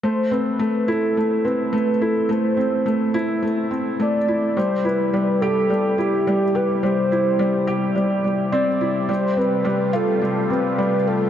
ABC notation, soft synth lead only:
X:1
M:4/4
L:1/8
Q:1/4=106
K:Am
V:1 name="Soft synth lead"
c B2 A2 B2 A | c4 z2 d2 | c B2 A2 G2 B | c4 z2 d2 |
c B2 A2 B2 A |]